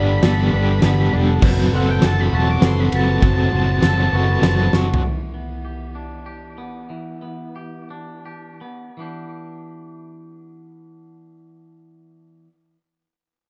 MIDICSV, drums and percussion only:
0, 0, Header, 1, 2, 480
1, 0, Start_track
1, 0, Key_signature, 1, "minor"
1, 0, Tempo, 600601
1, 1139, Time_signature, 3, 2, 24, 8
1, 4503, Tempo, 638978
1, 5943, Tempo, 714286
1, 6903, Tempo, 757576
1, 9761, End_track
2, 0, Start_track
2, 0, Title_t, "Drums"
2, 181, Note_on_c, 9, 38, 101
2, 181, Note_on_c, 9, 51, 93
2, 261, Note_off_c, 9, 38, 0
2, 261, Note_off_c, 9, 51, 0
2, 656, Note_on_c, 9, 38, 87
2, 656, Note_on_c, 9, 51, 84
2, 736, Note_off_c, 9, 38, 0
2, 736, Note_off_c, 9, 51, 0
2, 1135, Note_on_c, 9, 49, 123
2, 1138, Note_on_c, 9, 36, 125
2, 1215, Note_off_c, 9, 49, 0
2, 1218, Note_off_c, 9, 36, 0
2, 1613, Note_on_c, 9, 38, 92
2, 1613, Note_on_c, 9, 51, 88
2, 1693, Note_off_c, 9, 38, 0
2, 1693, Note_off_c, 9, 51, 0
2, 2094, Note_on_c, 9, 38, 101
2, 2094, Note_on_c, 9, 51, 80
2, 2174, Note_off_c, 9, 38, 0
2, 2174, Note_off_c, 9, 51, 0
2, 2336, Note_on_c, 9, 51, 85
2, 2416, Note_off_c, 9, 51, 0
2, 2576, Note_on_c, 9, 51, 90
2, 2577, Note_on_c, 9, 36, 114
2, 2656, Note_off_c, 9, 51, 0
2, 2657, Note_off_c, 9, 36, 0
2, 3056, Note_on_c, 9, 38, 90
2, 3056, Note_on_c, 9, 51, 89
2, 3136, Note_off_c, 9, 38, 0
2, 3136, Note_off_c, 9, 51, 0
2, 3541, Note_on_c, 9, 38, 90
2, 3541, Note_on_c, 9, 51, 94
2, 3621, Note_off_c, 9, 38, 0
2, 3621, Note_off_c, 9, 51, 0
2, 3782, Note_on_c, 9, 38, 77
2, 3861, Note_off_c, 9, 38, 0
2, 3945, Note_on_c, 9, 43, 104
2, 4025, Note_off_c, 9, 43, 0
2, 9761, End_track
0, 0, End_of_file